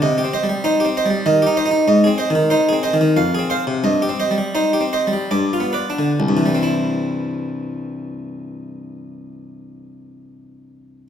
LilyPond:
<<
  \new Staff \with { instrumentName = "Harpsichord" } { \time 3/4 \key aes \lydian \tempo 4 = 79 ees''16 g'16 <c'' ees''>16 g16 c''16 g'16 <c'' ees''>16 g16 ees''16 g'16 <c'' ees''>16 ees'16 | ees''16 aes'16 <c'' ees''>16 ees16 c''16 aes'16 <c'' ees''>16 ees16 f''16 aes'16 <c'' f''>16 c16 | ees''16 g'16 <c'' ees''>16 g16 c''16 g'16 <c'' ees''>16 g16 d''16 f'16 <b' d''>16 d16 | <c, g, e g c' e'>2.~ |
<c, g, e g c' e'>2. | }
  \new Staff \with { instrumentName = "Harpsichord" } { \time 3/4 \key aes \lydian \tuplet 3/2 { c8 c'8 g8 ees'8 c'8 g8 ees8 ees'8 ees'8 } | \tuplet 3/2 { aes,8 c'8 ees8 ees'8 c'8 ees8 f,8 c'8 r8 } | \tuplet 3/2 { g,8 c'8 g8 ees'8 c'8 g8 g,8 b8 d'8 } | r2. |
r2. | }
>>